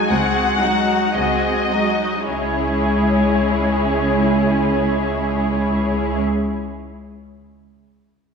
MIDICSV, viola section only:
0, 0, Header, 1, 2, 480
1, 0, Start_track
1, 0, Key_signature, 4, "minor"
1, 0, Tempo, 1041667
1, 526, Tempo, 1147228
1, 1005, Time_signature, 3, 2, 24, 8
1, 1006, Tempo, 1056338
1, 3757, End_track
2, 0, Start_track
2, 0, Title_t, "Viola section"
2, 0, Program_c, 0, 48
2, 43, Note_on_c, 0, 60, 36
2, 44, Note_on_c, 0, 56, 38
2, 274, Note_off_c, 0, 56, 0
2, 278, Note_off_c, 0, 60, 0
2, 279, Note_on_c, 0, 56, 38
2, 281, Note_on_c, 0, 54, 38
2, 520, Note_off_c, 0, 56, 0
2, 526, Note_on_c, 0, 56, 31
2, 526, Note_on_c, 0, 60, 31
2, 527, Note_off_c, 0, 54, 0
2, 753, Note_off_c, 0, 56, 0
2, 753, Note_off_c, 0, 60, 0
2, 768, Note_on_c, 0, 54, 30
2, 768, Note_on_c, 0, 56, 30
2, 996, Note_off_c, 0, 56, 0
2, 1001, Note_on_c, 0, 56, 34
2, 1001, Note_on_c, 0, 61, 36
2, 1004, Note_off_c, 0, 54, 0
2, 2792, Note_off_c, 0, 56, 0
2, 2792, Note_off_c, 0, 61, 0
2, 3757, End_track
0, 0, End_of_file